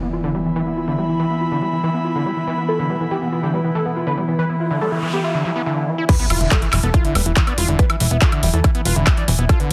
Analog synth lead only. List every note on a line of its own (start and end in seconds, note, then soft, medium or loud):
2.68 2.74 A4 loud
2.79 2.85 B3 medium
2.90 2.95 B3 medium
3.00 3.06 B3 medium
3.11 3.17 G4 medium
3.22 3.27 B3 medium
3.32 3.38 B3 medium
3.43 3.49 G4 loud
3.54 3.59 B3 medium
3.64 3.70 B3 medium
3.75 3.81 A4 medium
3.86 3.91 B3 medium
3.96 4.02 B3 medium
4.07 4.12 B4 medium
4.17 4.23 B3 medium
4.28 4.34 B3 medium
4.39 4.44 B4 loud
4.49 4.55 E4 medium
4.60 4.66 E4 medium
4.71 4.76 E4 medium
4.81 4.87 A4 medium
4.92 4.97 E4 medium
5.02 5.08 E4 medium
5.13 5.19 G4 medium
5.24 5.29 E4 medium
5.34 5.40 E4 medium
5.45 5.51 E4 medium
5.56 5.61 E4 medium
5.66 5.72 E4 medium
5.77 5.83 E4 medium
5.88 5.93 E4 medium
5.98 6.04 E4 medium
6.09 6.15 B4 loud
6.20 6.25 E4 medium
6.30 6.36 E4 medium
6.41 6.46 E4 medium
6.51 6.57 A4 medium
6.62 6.68 E4 medium
6.73 6.78 E4 medium
6.83 6.89 A4 loud
6.94 7.00 E4 medium
7.05 7.10 E4 medium
7.15 7.21 B4 loud
7.26 7.32 E4 medium
7.37 7.42 E4 medium
7.47 7.53 D5 loud
7.58 7.64 E4 medium
7.69 7.74 E4 medium
7.79 7.85 B4 loud
7.90 7.95 E4 medium
8.00 8.06 E4 medium
8.11 8.17 E4 medium
8.22 8.27 A4 loud
8.32 8.38 E4 medium
8.43 8.49 E4 medium
8.54 8.59 A4 loud
8.64 8.70 E4 medium
8.75 8.80 E4 medium
8.85 8.91 B4 medium
8.96 9.02 E4 medium
9.07 9.12 E4 medium
9.17 9.23 D5 loud
9.28 9.34 E4 medium
9.39 9.44 E4 medium
9.49 9.55 A4 loud
9.60 9.66 B3 medium